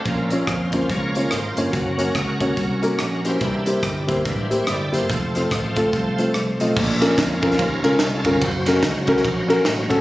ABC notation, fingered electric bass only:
X:1
M:4/4
L:1/8
Q:"Swing" 1/4=143
K:Bbm
V:1 name="Fingered electric bass" clef=bass
B,,,2 F,,2 D,,2 A,,, =G,,, | G,,,2 D,,2 C,,2 B,,,2 | C,,2 =G,,,2 =A,,,2 G,,, _G,,, | F,,,2 =A,,,2 C,,2 C,, _C,, |
B,,,2 F,,2 E,, D,, C,, =G,,, | G,,,2 D,,2 B,,,2 =A,,, D,, |]